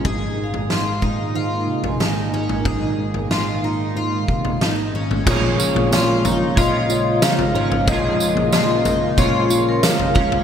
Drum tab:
CC |----------------|----------------|x---------------|----------------|
TB |----------------|----------------|x-x-x-x-x-x-x---|x-x-x-x-x-x-x---|
SD |----o-------o---|----o-------o---|----o-------o---|----o-------o---|
FT |o--o-------o---o|o--o-------o---o|o--o--o-o----o-o|o--o--o-o----o-o|
BD |o-----o---------|o---------o-----|o-------o-------|o-------o-----o-|